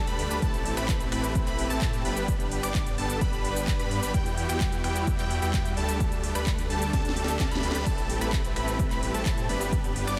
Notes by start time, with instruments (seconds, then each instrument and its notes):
Already playing: analog synth pad G3 A4 D5 A5
0.07 detuned saw bass D2, supersaw synth G3 A3 D4 G4 B4, digital synth lead B5, closed hi-hat, shaker
0.19 detuned saw bass D2, supersaw synth G3 A3 D4 G4 B4, digital synth lead B5, open hi-hat
0.31 detuned saw bass D2, supersaw synth G3 A3 D4 G4 B4, digital synth lead B5, closed hi-hat, shaker
0.42 detuned saw bass A1, supersaw synth A3 C4 E4 G4 A4, analog synth pad C4 G4 E5, digital synth lead A5, kick, closed hi-hat, shaker
0.54 closed hi-hat, shaker
0.65 open hi-hat
0.77 detuned saw bass A1, supersaw synth A3 C4 E4 G4 B4, digital synth lead B5, finger snap, closed hi-hat, shaker
0.88 kick, clap, closed hi-hat, shaker
1.00 closed hi-hat, shaker
1.12 detuned saw bass A1, supersaw synth A3 C4 E4 G4 B4, digital synth lead B5, finger snap, open hi-hat
1.24 closed hi-hat, shaker
1.35 kick, closed hi-hat, shaker
1.47 detuned saw bass A1, supersaw synth A3 C4 E4 G4 B4, digital synth lead B5, clap, closed hi-hat, shaker
1.58 open hi-hat
1.70 detuned saw bass A1, supersaw synth A3 C4 E4 G4 A4, digital synth lead A5, closed hi-hat, shaker
1.81 detuned saw bass A2, supersaw synth A3 C4 E4 G4 A4, digital synth lead A5, kick, clap, closed hi-hat, shaker
1.93 closed hi-hat, shaker
2.05 detuned saw bass G1, supersaw synth G3 B3 D4 G4 B4, digital synth lead B5, open hi-hat
2.17 closed hi-hat, shaker
2.28 analog synth pad B4 D5 B5, kick, closed hi-hat, shaker
2.40 closed hi-hat, shaker
2.52 open hi-hat
2.63 detuned saw bass G1, supersaw synth G3 B3 D4 G4 D5, digital synth lead D6, finger snap, closed hi-hat, shaker
2.75 kick, clap, closed hi-hat, shaker
2.86 closed hi-hat, shaker
2.98 detuned saw bass G1, supersaw synth G3 B3 D4 G4 A4, digital synth lead A5, open hi-hat
3.10 closed hi-hat, shaker
3.21 detuned saw bass G1, supersaw synth G3 B3 D4 G4 B4, digital synth lead B5, kick, closed hi-hat, shaker
3.33 closed hi-hat, shaker
3.45 open hi-hat
3.56 closed hi-hat, shaker
3.68 kick, clap, closed hi-hat, shaker
3.79 detuned saw bass G2, supersaw synth G3 B3 D4 G4 B4, digital synth lead B5, closed hi-hat, shaker
3.91 open hi-hat
4.03 detuned saw bass G1, supersaw synth G3 B3 D4 G4 B4, digital synth lead B5, closed hi-hat, shaker
4.14 detuned saw bass E2, analog synth pad G3 E5 B5, supersaw synth G3 B3 E4 F#4 G4, digital synth lead G5, kick, closed hi-hat, shaker
4.26 closed hi-hat, shaker
4.37 open hi-hat
4.49 detuned saw bass E2, supersaw synth G3 B3 E4 F#4 G4, digital synth lead G5, finger snap, closed hi-hat, shaker
4.61 kick, clap, closed hi-hat, shaker
4.72 closed hi-hat, shaker
4.84 detuned saw bass E2, supersaw synth G3 B3 E4 F#4 G4, digital synth lead G5, finger snap, open hi-hat
4.96 closed hi-hat, shaker
5.07 kick, closed hi-hat, shaker
5.19 detuned saw bass E2, supersaw synth G3 B3 E4 F#4 G4, digital synth lead G5, clap, closed hi-hat, shaker
5.30 open hi-hat
5.42 detuned saw bass E2, supersaw synth G3 B3 E4 F#4 G4, digital synth lead G5, closed hi-hat, shaker
5.54 detuned saw bass E2, supersaw synth G3 B3 E4 F#4 G4, digital synth lead G5, kick, clap, closed hi-hat, shaker
5.65 closed hi-hat, shaker
5.77 detuned saw bass D2, supersaw synth G3 A3 D4 G4 A4, digital synth lead A5, open hi-hat
5.89 closed hi-hat, shaker
6.00 analog synth pad A4 D5 A5, kick, closed hi-hat, shaker
6.12 closed hi-hat, shaker
6.24 open hi-hat
6.35 detuned saw bass D2, supersaw synth G3 A3 D4 G4 B4, digital synth lead B5, finger snap, closed hi-hat, shaker
6.47 kick, clap, closed hi-hat, shaker
6.58 closed hi-hat, shaker
6.70 detuned saw bass D2, supersaw synth G3 A3 D4 G4 A4, digital synth lead A5, open hi-hat
6.82 closed hi-hat, shaker
6.93 detuned saw bass D2, supersaw synth G3 A3 D4 G4 A4, digital synth lead A5, kick, snare, closed hi-hat, reverse cymbal, shaker
7.05 snare, closed hi-hat, shaker
7.17 open hi-hat
7.24 snare, closed hi-hat
7.28 shaker
7.40 detuned saw bass D2, supersaw synth G3 A3 D4 G4 A4, digital synth lead A5, kick, snare, clap, closed hi-hat, shaker
7.51 detuned saw bass D2, supersaw synth G3 A3 D4 G4 B4, digital synth lead B5, snare, closed hi-hat, shaker
7.63 detuned saw bass D2, supersaw synth G3 A3 D4 G4 B4, digital synth lead B5, open hi-hat
7.71 detuned saw bass D2, supersaw synth G3 A3 D4 G4 B4, digital synth lead B5, snare, closed hi-hat
7.75 shaker
7.86 detuned saw bass A1, analog synth pad G3 C4 E5, supersaw synth A3 C4 E4 G4 A4, digital synth lead A5, kick, closed hi-hat, crash, shaker
7.98 closed hi-hat, shaker
8.10 open hi-hat
8.21 detuned saw bass A1, supersaw synth A3 C4 E4 G4 B4, digital synth lead B5, finger snap, closed hi-hat, shaker
8.33 kick, clap, closed hi-hat, shaker
8.45 closed hi-hat, shaker
8.56 detuned saw bass A1, supersaw synth A3 C4 E4 G4 B4, digital synth lead B5, finger snap, open hi-hat
8.68 closed hi-hat, shaker
8.79 kick, closed hi-hat, shaker
8.91 detuned saw bass A1, supersaw synth A3 C4 E4 G4 B4, digital synth lead B5, clap, closed hi-hat, shaker
9.03 open hi-hat
9.14 detuned saw bass A1, supersaw synth A3 C4 E4 G4 A4, digital synth lead A5, closed hi-hat, shaker
9.26 detuned saw bass A2, supersaw synth A3 C4 E4 G4 A4, digital synth lead A5, kick, clap, closed hi-hat, shaker
9.38 closed hi-hat, shaker
9.49 detuned saw bass G1, supersaw synth G3 B3 D4 G4 B4, digital synth lead B5, open hi-hat
9.61 closed hi-hat, shaker
9.72 analog synth pad B4 D5 B5, kick, closed hi-hat, shaker
9.84 closed hi-hat, shaker
9.96 open hi-hat
10.07 detuned saw bass G1, supersaw synth G3 B3 D4 G4 D5, digital synth lead D6, finger snap, closed hi-hat, shaker